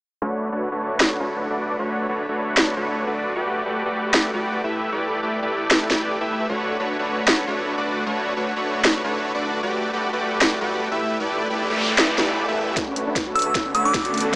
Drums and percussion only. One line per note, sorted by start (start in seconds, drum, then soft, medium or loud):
1.00 snare loud
1.00 clap medium
2.57 snare loud
2.57 clap medium
4.14 snare loud
4.14 clap medium
5.71 snare loud
5.71 clap medium
5.90 snare medium
7.28 snare loud
7.28 clap medium
8.85 snare loud
8.85 clap medium
10.41 snare loud
10.41 clap medium
11.98 snare loud
11.98 clap medium
12.18 snare medium
12.77 kick loud
12.77 snare soft
12.77 closed hi-hat medium
12.96 closed hi-hat medium
13.16 kick medium
13.16 snare soft
13.16 closed hi-hat medium
13.36 closed hi-hat soft
13.39 closed hi-hat medium
13.42 closed hi-hat medium
13.55 kick loud
13.55 snare soft
13.55 closed hi-hat medium
13.75 closed hi-hat medium
13.94 kick medium
13.94 snare medium
13.94 closed hi-hat medium
14.05 closed hi-hat medium
14.14 closed hi-hat soft
14.17 closed hi-hat medium
14.20 closed hi-hat medium